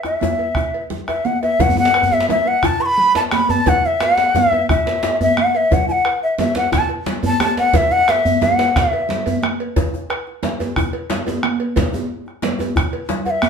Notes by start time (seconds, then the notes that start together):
0.03 E5, bombo rim, djembe slap, high conga, djembe tone
0.21 bombo rim, cowbell, djembe slap, high conga, low conga, djembe bass
0.38 bombo rim, cowbell
0.55 bombo rim, bombo low, djembe tone
0.74 cowbell
0.90 bombo rim, low conga, djembe bass
1.08 E5, bombo rim, cowbell, high conga, djembe bass
1.25 F#5, djembe slap, high conga
1.42 E5, bombo rim, cowbell, djembe slap
1.60 F#5, bombo low, cowbell, djembe slap, djembe bass, low conga
1.69 djembe bass
1.77 F#5, djembe tone
1.85 djembe slap
1.94 bombo rim, cowbell
2.03 djembe bass
2.11 E5, bombo rim, djembe slap, djembe tone
2.20 djembe slap
2.29 E5, cowbell, djembe slap, high conga, low conga
2.46 F#5, bombo rim, cowbell, djembe slap
2.63 A5, bombo rim, bombo low, djembe bass
2.80 C#6, bombo rim, cowbell, djembe slap
2.86 B5
2.98 low conga
3.15 A5, cowbell, djembe slap, djembe tone
3.31 B5, bombo rim, djembe slap, high conga
3.49 A5, cowbell, djembe bass
3.66 F#5, bombo low, cowbell, djembe slap, low conga, djembe bass
3.85 E5, djembe tone
4.00 F#5, bombo rim, cowbell, djembe slap
4.18 djembe slap
4.19 djembe slap
4.35 E5, cowbell, djembe slap, high conga, djembe bass, low conga
4.52 bombo rim, cowbell, djembe slap, djembe tone
4.69 E5, bombo rim, bombo low, djembe bass
4.86 bombo rim, cowbell, djembe slap
5.03 djembe slap
5.21 E5, cowbell, djembe tone, djembe bass
5.37 F#5, bombo rim, high conga
5.55 E5, cowbell
5.71 F#5, bombo low, cowbell, djembe slap, low conga, djembe bass
5.88 F#5 A5, djembe tone
6.05 bombo rim, cowbell
6.22 E5, bombo rim, djembe slap
6.38 E5, cowbell, djembe slap, high conga, djembe tone, low conga
6.55 F#5, bombo rim, cowbell, djembe slap, djembe tone
6.72 A5, bombo rim, bombo low, djembe slap, djembe bass
6.89 bombo rim, cowbell, djembe slap
7.06 djembe slap, low conga
7.23 A5, cowbell, djembe tone, djembe bass
7.40 A5, bombo rim, djembe tone, high conga
7.57 F#5, cowbell, djembe slap
7.73 E5, bombo low, cowbell, djembe slap, low conga, djembe bass
7.91 F#5, bombo rim, djembe slap, djembe tone
8.07 E5, bombo rim, cowbell, djembe slap
8.25 djembe slap, djembe bass
8.42 F#5, bombo rim, cowbell, djembe slap, high conga, djembe tone, low conga
8.58 cowbell, djembe slap, djembe tone
8.76 E5, bombo rim, bombo low, djembe slap, djembe bass
8.93 bombo rim, cowbell
9.09 djembe slap, low conga
9.26 bombo rim, cowbell, djembe slap, djembe tone, djembe bass
9.43 bombo rim, djembe slap, high conga
9.60 cowbell
9.76 bombo low, cowbell, djembe slap, low conga, djembe bass
9.94 djembe tone
10.10 bombo rim, cowbell
10.27 bombo rim, djembe slap
10.43 cowbell, djembe slap, high conga, low conga
10.60 bombo rim, cowbell, djembe slap, djembe tone
10.76 bombo rim, bombo low, djembe bass
10.93 bombo rim, cowbell, djembe slap
11.10 djembe slap, low conga
11.27 cowbell, djembe tone
11.43 bombo rim, high conga
11.60 cowbell
11.76 bombo low, cowbell, djembe slap, low conga, djembe bass
11.93 djembe tone
12.26 bombo rim, djembe slap
12.42 cowbell, djembe slap, high conga, low conga
12.59 bombo rim, cowbell, djembe slap, djembe tone
12.76 bombo rim, bombo low, djembe bass
12.92 bombo rim, cowbell, djembe slap
13.09 djembe slap, low conga
13.25 F#5, cowbell, djembe tone
13.30 E5
13.42 bombo rim, high conga, djembe tone